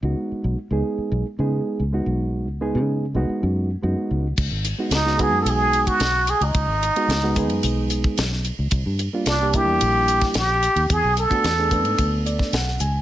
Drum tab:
CC |----------------|----------------|x---------------|----------------|
RD |----------------|----------------|--x-x-x-x-xxx-xx|x-xxx-xxx-x-x-x-|
HH |----------------|----------------|--p-p-p-p-p-p-p-|p-p-p-p-p-p-p-p-|
SD |----------------|----------------|----oo------o---|----o-------oo--|
BD |----------------|----------------|o-----o----o----|o-----o----o----|

CC |----------------|----------------|
RD |x-x-x-x-x-xxx-xx|x-xxx-xxx-x-x-x-|
HH |p-p-p-p-p-p-p-p-|p-p-p-p-p-p-p-p-|
SD |----o------oo---|----o------ooo--|
BD |o-----o----o----|o--o--o-o--o----|